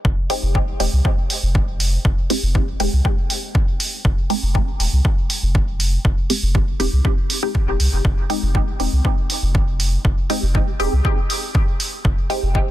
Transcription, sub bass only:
0.05 0.13 F1 loud
0.43 0.73 F1 loud
0.80 0.88 D#1 loud
0.93 1.00 C2 medium
1.43 1.98 F1 medium
2.05 2.13 F1 loud
2.43 2.73 F1 loud
2.80 2.88 D#1 loud
2.93 3.00 C2 medium
4.05 4.13 F1 loud
4.43 4.73 F1 loud
4.80 4.88 D#1 loud
4.93 5.00 C2 medium
5.43 5.98 F1 medium
6.05 6.13 F1 loud
6.43 6.73 F1 loud
6.80 6.88 D#1 loud
6.93 7.00 C2 medium
7.68 7.75 D#1 loud
7.80 7.88 C2 medium
7.93 8.00 F1 medium
8.05 8.13 F1 loud
8.43 8.73 F1 loud
8.80 8.88 D#1 medium
8.93 9.00 C2 medium
9.43 9.98 F1 medium
10.05 10.13 F1 loud
10.43 10.73 F1 loud
10.80 10.88 D#1 loud
10.93 11.00 C2 medium
12.05 12.13 F1 loud
12.43 12.71 F1 loud

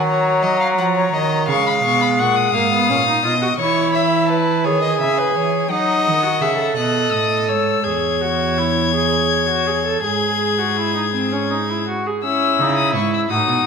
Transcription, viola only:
0.00 1.48 F#3 medium
1.49 2.56 G#3 medium
2.54 2.71 A#3 medium
2.72 2.91 B3 medium
2.89 3.07 C#4 medium
3.07 3.24 D#4 medium
3.25 3.31 F4 medium
3.42 3.49 F#4 medium
3.59 4.66 E4 medium
4.65 5.69 G#4 medium
5.70 6.24 D#4 medium
6.23 6.42 F#4 medium
6.41 6.58 G#4 medium
6.59 7.82 A4 medium
7.85 8.23 G#4 medium
8.21 8.59 F#4 medium
8.58 8.93 E4 medium
8.94 9.48 G#4 medium
9.49 9.68 F#4 medium
9.67 9.85 G#4 medium
9.85 10.03 A4 medium
10.04 10.60 G#4 medium
10.59 10.78 F#4 soft
10.77 10.94 E4 medium
10.95 11.02 D#4 medium
11.14 11.33 C4 medium
11.32 11.52 C#4 medium
11.50 11.71 D#4 medium
11.70 11.88 E4 soft
11.88 12.08 F#4 medium
12.06 12.24 G#4 medium
12.25 12.62 C#4 medium
12.60 12.95 D#4 medium
12.95 13.30 E4 medium
13.31 13.66 D#4 medium

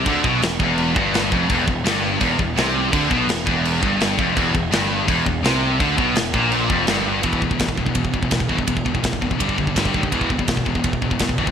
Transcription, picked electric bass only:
0.06 0.23 D2 loud
0.24 0.40 B1 medium
0.41 0.58 E1 medium
0.60 0.93 E1 loud
0.96 1.29 G1 medium
1.32 1.48 F1 loud
1.50 1.66 E1 loud
1.68 1.84 E1 medium
1.86 2.19 G1 medium
2.21 2.38 E1 loud
2.39 2.56 E1 medium
2.57 2.90 C2 loud
2.93 3.10 D2 loud
3.11 3.27 B1 medium
3.27 3.45 E1 medium
3.47 3.80 E1 loud
3.83 4.16 G1 loud
4.19 4.35 F1 loud
4.37 4.53 E1 loud
4.54 4.71 E1 medium
4.73 5.06 G1 loud
5.09 5.25 E1 loud
5.27 5.42 E1 medium
5.43 5.77 C2 loud
5.80 5.97 D2 loud
5.98 6.14 B1 medium
6.14 6.32 E1 medium
6.34 6.67 A#1 loud
6.69 6.86 F1 medium
6.87 7.21 G1 loud
7.24 7.49 E1 medium
7.60 7.73 E1 medium
7.78 7.91 E1 medium
7.96 8.08 E1 medium
8.14 8.27 E1 medium
8.31 8.44 E1 medium
8.49 8.62 G1 medium
8.68 8.81 E1 medium
8.86 8.99 E1 medium
9.04 9.29 F1 medium
9.40 9.53 G1 medium
9.58 9.71 G1 medium
9.76 9.89 G1 medium
9.94 10.07 D#2 medium
10.13 10.38 E1 medium
10.49 10.61 E1 medium
10.66 10.79 E1 medium
10.84 10.97 E1 medium
11.02 11.15 E1 medium
11.21 11.33 E1 medium
11.38 11.51 G1 medium

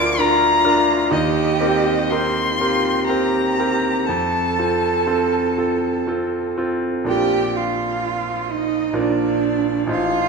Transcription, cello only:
0.00 0.18 F4 medium
0.18 1.11 F4 medium
1.10 2.12 G4 loud
2.10 2.57 D#4 medium
2.58 3.04 F4 medium
3.05 4.03 G4 medium
4.06 6.52 A4 medium
7.08 7.59 G4 medium
7.57 8.53 F4 medium
8.52 8.99 D#4 medium
8.98 9.90 D4 medium
9.91 10.29 F4 loud

